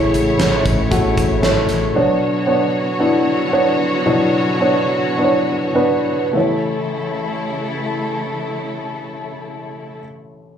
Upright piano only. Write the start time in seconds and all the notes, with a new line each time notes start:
Already playing: A2 E3 A3 E4 F#4 G#4 B4 C#5
0.39 A3 E4 C#5
0.91 A3 E4 F#4
1.43 A3 E4 C#5
1.95 B2 F#3 B3 D4 C#5
2.46 B3 D4 C#5
2.99 B3 D4 E4
3.52 B3 D4 C#5
4.06 B2 F#3 B3 D4 E4
4.60 B3 D4 C#5
5.17 B3 D4 B4
5.24 C#5
5.75 B3 D4 B4
6.33 A1 A3 E4 C#5